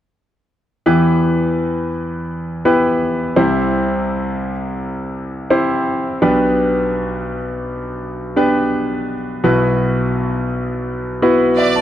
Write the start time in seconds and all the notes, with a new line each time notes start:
0.86 E2 E3 B3 E4 G4 B4
2.65 B3 E4 G4 B4
3.36 C2 C3 C4 E4 G4 C5
5.50 C4 E4 G4 C5
6.22 B1 B2 B3 D4 G4 B4
8.36 B3 D4 G4 B4
9.44 B1 B2 B3 E4 F#4 B4
11.22 B3 E4 F#4 B4
11.58 D5 E5
11.76 A5